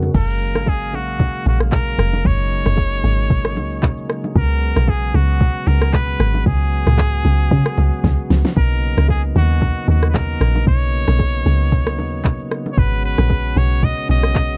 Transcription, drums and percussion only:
0.03 low bongo medium
0.03 shaker soft
0.14 kick loud
0.14 crash loud
0.14 low conga medium
0.14 shaker medium
0.30 shaker medium
0.41 shaker loud
0.55 cross-stick medium
0.55 low bongo medium
0.55 shaker medium
0.66 kick medium
0.66 high bongo medium
0.66 shaker medium
0.82 shaker medium
0.93 high bongo medium
0.93 low bongo medium
0.93 shaker loud
1.08 shaker medium
1.19 kick loud
1.19 low conga medium
1.19 shaker medium
1.35 shaker medium
1.46 low bongo medium
1.46 shaker medium
1.60 cross-stick loud
1.60 shaker medium
1.72 kick medium
1.72 clap loud
1.72 high bongo medium
1.72 low conga medium
1.72 shaker medium
1.87 shaker medium
1.99 cross-stick loud
1.99 shaker medium
2.13 low bongo medium
2.13 shaker medium
2.25 kick loud
2.25 low conga medium
2.25 shaker medium
2.40 shaker medium
2.52 shaker loud
2.66 cross-stick medium
2.66 low bongo medium
2.66 shaker medium
2.77 kick loud
2.77 high bongo medium
2.77 shaker medium
2.92 shaker medium
3.04 high bongo medium
3.04 low bongo medium
3.04 shaker loud
3.19 shaker medium
3.30 kick loud
3.30 low conga medium
3.30 shaker medium
3.45 cross-stick loud
3.45 shaker medium
3.57 low bongo medium
3.57 shaker medium
3.71 shaker medium
3.83 kick medium
3.83 clap loud
3.83 high bongo medium
3.83 low conga medium
3.83 shaker medium
3.97 shaker medium
4.10 cross-stick loud
4.10 shaker medium
4.24 low bongo medium
4.24 shaker soft
4.35 kick loud
4.35 low conga medium
4.35 shaker medium
4.51 shaker medium
4.62 shaker loud
4.76 cross-stick medium
4.76 low bongo medium
4.76 shaker medium
4.88 kick medium
4.88 high bongo medium
4.88 shaker medium
5.03 shaker medium
5.14 high bongo medium
5.14 low bongo medium
5.14 shaker loud
5.29 shaker medium
5.40 kick loud
5.40 low conga medium
5.40 shaker medium
5.56 shaker medium
5.67 low bongo medium
5.67 shaker medium
5.81 cross-stick loud
5.81 shaker medium
5.93 kick medium
5.93 clap loud
5.93 high bongo medium
5.93 low conga medium
5.93 shaker medium
6.08 shaker medium
6.20 cross-stick loud
6.20 shaker medium
6.34 low bongo medium
6.34 shaker medium
6.46 kick loud
6.46 low conga medium
6.46 shaker medium
6.61 shaker medium
6.73 shaker loud
6.87 cross-stick medium
6.87 mid tom medium
6.87 low bongo medium
6.87 shaker medium
6.98 kick loud
6.98 clap medium
6.98 high bongo medium
6.98 shaker medium
7.13 shaker medium
7.25 high bongo medium
7.25 low bongo medium
7.25 shaker loud
7.40 shaker medium
7.51 kick loud
7.51 low conga medium
7.51 shaker medium
7.66 cross-stick loud
7.66 shaker medium
7.77 low bongo medium
7.77 shaker medium
7.92 shaker medium
8.04 kick loud
8.04 snare medium
8.04 high bongo medium
8.04 low conga medium
8.04 shaker medium
8.19 shaker medium
8.30 snare loud
8.30 open hi-hat medium
8.30 shaker medium
8.45 snare loud
8.45 low bongo medium
8.45 shaker medium
8.57 kick loud
8.57 low conga medium
8.57 shaker medium
8.72 shaker medium
8.83 shaker loud
8.97 cross-stick medium
8.97 low bongo medium
8.97 shaker medium
9.08 kick medium
9.08 high bongo medium
9.08 shaker medium
9.24 shaker medium
9.36 high bongo medium
9.36 low bongo medium
9.36 shaker loud
9.50 shaker medium
9.61 kick loud
9.61 low conga medium
9.61 shaker medium
9.77 shaker medium
9.88 low bongo medium
9.88 shaker medium
10.02 cross-stick loud
10.02 shaker medium
10.14 kick loud
10.14 clap loud
10.14 high bongo medium
10.14 low conga medium
10.14 shaker medium
10.29 shaker medium
10.41 cross-stick loud
10.41 shaker medium
10.55 low bongo medium
10.55 shaker medium
10.67 kick loud
10.67 low conga medium
10.67 shaker medium
10.82 shaker medium
10.93 shaker loud
11.08 cross-stick medium
11.08 low bongo medium
11.08 shaker medium
11.19 kick loud
11.19 high bongo medium
11.19 shaker medium
11.34 shaker medium
11.46 high bongo medium
11.46 low bongo medium
11.46 shaker loud
11.60 shaker medium
11.72 kick loud
11.72 low conga medium
11.72 shaker medium
11.87 cross-stick loud
11.87 shaker medium
11.98 low bongo medium
11.98 shaker medium
12.13 shaker medium
12.25 kick medium
12.25 clap loud
12.25 high bongo medium
12.25 low conga medium
12.25 shaker medium
12.39 shaker medium
12.51 cross-stick loud
12.51 shaker medium
12.66 low bongo medium
12.66 shaker soft
12.77 kick loud
12.77 low conga medium
12.77 shaker medium
12.92 shaker medium
13.04 shaker loud
13.18 cross-stick medium
13.18 low bongo medium
13.18 shaker medium
13.29 kick medium
13.29 high bongo medium
13.29 shaker medium
13.45 shaker medium
13.56 high bongo medium
13.56 low bongo medium
13.56 shaker loud
13.71 shaker medium
13.82 kick loud
13.82 low conga medium
13.82 shaker medium
13.98 shaker medium
14.09 low bongo medium
14.09 shaker medium
14.23 cross-stick loud
14.23 shaker medium
14.35 kick loud
14.35 clap medium
14.35 high bongo medium
14.35 low conga medium
14.35 shaker medium
14.50 shaker medium

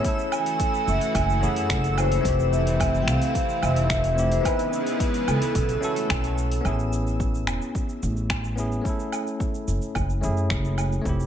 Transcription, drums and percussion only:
0.04 kick loud
0.04 open hi-hat medium
0.04 cabasa soft
0.19 cabasa soft
0.32 cabasa medium
0.32 low woodblock medium
0.46 open hi-hat soft
0.46 cabasa soft
0.60 kick loud
0.60 open hi-hat medium
0.60 cabasa soft
0.74 cabasa soft
0.88 cabasa medium
1.01 open hi-hat soft
1.01 cabasa soft
1.15 kick loud
1.15 open hi-hat medium
1.15 cabasa soft
1.15 low woodblock medium
1.30 cabasa soft
1.43 cabasa medium
1.56 open hi-hat soft
1.56 cabasa soft
1.70 finger snap medium
1.70 kick loud
1.70 open hi-hat medium
1.70 cabasa soft
1.84 open hi-hat soft
1.84 cabasa soft
1.98 cabasa medium
1.98 low woodblock medium
2.12 open hi-hat soft
2.12 cabasa soft
2.25 kick loud
2.25 open hi-hat medium
2.25 cabasa soft
2.40 cabasa soft
2.53 cabasa medium
2.67 open hi-hat soft
2.67 cabasa soft
2.80 kick loud
2.80 open hi-hat medium
2.80 cabasa soft
2.80 low woodblock medium
2.95 cabasa soft
3.08 finger snap medium
3.08 cabasa medium
3.22 open hi-hat soft
3.22 cabasa soft
3.35 kick medium
3.35 open hi-hat medium
3.35 cabasa soft
3.49 cabasa soft
3.63 cabasa medium
3.63 low woodblock medium
3.76 open hi-hat soft
3.76 cabasa soft
3.90 finger snap medium
3.90 kick loud
3.90 open hi-hat medium
3.90 cabasa soft
4.04 open hi-hat soft
4.04 cabasa soft
4.18 cabasa medium
4.32 open hi-hat soft
4.32 cabasa soft
4.45 kick loud
4.45 open hi-hat medium
4.45 cabasa soft
4.45 low woodblock medium
4.59 open hi-hat soft
4.59 cabasa soft
4.73 cabasa medium
4.87 open hi-hat soft
4.87 cabasa soft
5.00 kick loud
5.00 open hi-hat medium
5.00 cabasa soft
5.14 open hi-hat soft
5.14 cabasa soft
5.28 cabasa medium
5.28 low woodblock medium
5.42 open hi-hat soft
5.42 cabasa soft
5.55 kick loud
5.55 open hi-hat medium
5.55 cabasa soft
5.69 open hi-hat soft
5.69 cabasa soft
5.83 cabasa medium
5.96 open hi-hat soft
5.96 cabasa soft
6.10 finger snap medium
6.10 kick loud
6.10 open hi-hat medium
6.10 cabasa soft
6.10 low woodblock medium
6.24 open hi-hat soft
6.24 cabasa soft
6.38 cabasa medium
6.51 open hi-hat soft
6.51 cabasa soft
6.65 kick medium
6.65 cabasa soft
6.65 low woodblock medium
6.79 cabasa soft
6.93 cabasa medium
7.07 cabasa soft
7.20 kick loud
7.20 cabasa soft
7.35 cabasa soft
7.47 finger snap medium
7.47 cabasa medium
7.47 low woodblock medium
7.62 cabasa soft
7.75 kick medium
7.75 cabasa soft
7.89 cabasa soft
8.03 cabasa medium
8.17 cabasa soft
8.30 finger snap medium
8.30 kick loud
8.30 cabasa soft
8.30 low woodblock medium
8.44 cabasa soft
8.58 cabasa medium
8.72 cabasa soft
8.85 kick loud
8.85 cabasa soft
9.00 cabasa soft
9.12 cabasa medium
9.12 low woodblock medium
9.27 cabasa soft
9.40 kick loud
9.40 cabasa soft
9.54 cabasa soft
9.68 cabasa medium
9.82 cabasa soft
9.95 kick loud
9.95 cabasa soft
9.95 low woodblock medium
10.10 cabasa soft
10.23 cabasa medium
10.37 cabasa soft
10.50 finger snap medium
10.50 kick loud
10.50 cabasa soft
10.65 cabasa soft
10.78 cabasa medium
10.78 low woodblock medium
10.92 cabasa soft
11.05 kick loud
11.05 cabasa soft
11.20 cabasa soft

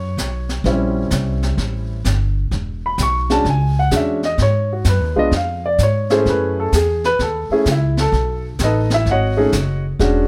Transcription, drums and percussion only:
0.18 kick soft
0.18 snare medium
0.18 hi-hat pedal soft
0.49 snare soft
0.64 brush sweep soft
0.64 kick soft
0.64 snare soft
1.11 kick soft
1.11 snare medium
1.11 hi-hat pedal medium
1.43 snare soft
1.58 brush sweep soft
1.58 kick soft
1.58 snare soft
2.05 kick soft
2.05 snare medium
2.05 hi-hat pedal medium
2.52 brush sweep soft
2.52 kick soft
2.52 snare soft
2.98 kick soft
2.98 snare medium
2.98 hi-hat pedal medium
3.30 snare soft
3.45 brush sweep soft
3.45 kick soft
3.45 snare soft
3.91 kick soft
3.91 snare medium
3.91 hi-hat pedal medium
4.23 snare soft
4.38 brush sweep soft
4.38 kick soft
4.38 snare soft
4.84 kick soft
4.84 snare medium
4.84 hi-hat pedal soft
5.32 brush sweep soft
5.32 kick soft
5.32 snare soft
5.78 kick soft
5.78 snare medium
5.78 hi-hat pedal medium
6.10 snare soft
6.26 brush sweep soft
6.26 kick soft
6.26 snare soft
6.73 kick soft
6.73 snare medium
6.73 hi-hat pedal medium
7.04 snare soft
7.19 brush sweep soft
7.19 kick soft
7.19 snare soft
7.65 kick soft
7.65 snare medium
7.65 hi-hat pedal soft
7.97 snare soft
8.13 brush sweep soft
8.13 kick soft
8.13 snare soft
8.59 kick soft
8.59 snare medium
8.59 hi-hat pedal soft
8.90 snare medium
9.06 brush sweep soft
9.06 kick soft
9.06 snare soft
9.52 kick soft
9.52 snare medium
9.52 hi-hat pedal medium
9.99 brush sweep soft
9.99 kick soft
9.99 snare soft

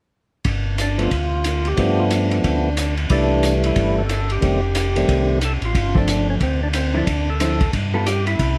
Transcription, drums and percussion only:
0.45 kick soft
0.45 ride soft
0.78 hi-hat pedal soft
0.78 ride soft
0.99 ride soft
1.11 kick soft
1.11 ride soft
1.44 hi-hat pedal soft
1.44 ride soft
1.65 ride soft
1.77 kick soft
1.77 ride soft
2.10 hi-hat pedal soft
2.10 ride soft
2.31 ride soft
2.44 kick soft
2.44 ride soft
2.77 hi-hat pedal soft
2.77 ride soft
2.97 ride soft
3.10 kick soft
3.10 ride medium
3.43 hi-hat pedal soft
3.43 ride soft
3.64 ride soft
3.76 kick soft
3.76 ride soft
4.09 hi-hat pedal soft
4.09 ride soft
4.30 ride soft
4.42 kick soft
4.42 ride soft
4.75 hi-hat pedal soft
4.75 ride medium
4.96 ride soft
5.09 kick soft
5.09 ride soft
5.41 hi-hat pedal soft
5.41 ride soft
5.62 ride soft
5.75 kick soft
5.75 ride soft
5.95 kick soft
6.08 hi-hat pedal soft
6.08 ride soft
6.40 kick soft
6.40 ride soft
6.73 hi-hat pedal soft
6.73 ride medium
7.07 kick soft
7.07 ride soft
7.40 hi-hat pedal soft
7.40 ride soft
7.61 kick soft
7.61 ride soft
7.73 kick soft
7.73 ride soft
8.06 hi-hat pedal soft
8.06 ride soft
8.27 ride soft
8.39 kick soft
8.39 ride soft

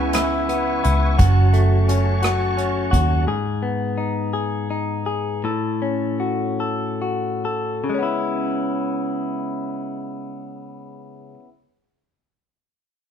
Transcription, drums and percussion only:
0.13 cross-stick medium
0.13 closed hi-hat medium
0.49 closed hi-hat soft
0.84 closed hi-hat medium
1.19 kick medium
1.19 closed hi-hat medium
1.54 closed hi-hat soft
1.89 closed hi-hat medium
2.23 cross-stick medium
2.23 closed hi-hat medium
2.58 closed hi-hat soft
2.93 kick medium
2.93 closed hi-hat medium

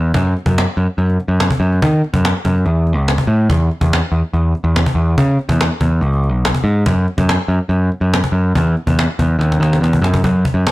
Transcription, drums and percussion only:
0.14 cajon bass loud
0.37 cajon slap soft
0.46 cajon bass medium
0.58 cajon slap loud
0.78 cajon slap soft
0.99 cajon slap soft
1.10 cajon slap soft
1.20 cajon slap soft
1.40 cajon slap loud
1.51 cajon bass medium
1.62 cajon slap soft
1.73 cajon slap soft
1.82 cajon bass loud
2.04 cajon slap soft
2.14 cajon bass medium
2.14 cajon slap soft
2.25 cajon slap loud
2.45 cajon bass medium
2.56 cajon slap soft
2.66 cajon slap soft
2.87 cajon slap soft
3.08 cajon slap loud
3.18 cajon bass medium
3.29 cajon slap soft
3.50 cajon bass loud
3.71 cajon slap soft
3.81 cajon bass medium
3.93 cajon slap loud
4.13 cajon slap soft
4.34 cajon slap soft
4.55 cajon slap soft
4.76 cajon slap loud
4.86 cajon bass medium
4.97 cajon slap soft
5.18 cajon bass loud
5.39 cajon slap soft
5.49 cajon bass medium
5.61 cajon slap loud
5.81 cajon bass medium
6.02 cajon slap soft
6.13 cajon slap soft
6.24 cajon slap soft
6.45 cajon slap loud
6.55 cajon bass medium
6.66 cajon slap soft
6.86 cajon bass loud
7.08 cajon slap soft
7.18 cajon bass medium
7.18 cajon slap soft
7.29 cajon slap loud
7.50 cajon slap soft
7.71 cajon slap soft
7.92 cajon slap soft
8.14 cajon slap loud
8.24 cajon bass medium
8.24 cajon slap soft
8.35 cajon slap soft
8.55 cajon bass loud
8.77 cajon slap soft
8.87 cajon bass medium
8.99 cajon slap loud
9.19 cajon bass medium
9.41 cajon slap medium
9.52 cajon slap medium
9.63 cajon slap medium
9.73 cajon slap medium
9.83 cajon slap soft
9.83 cajon slap medium
9.93 cajon bass medium
10.04 cajon slap medium
10.14 cajon bass medium
10.24 cajon bass medium
10.45 cajon bass medium
10.67 cajon slap medium

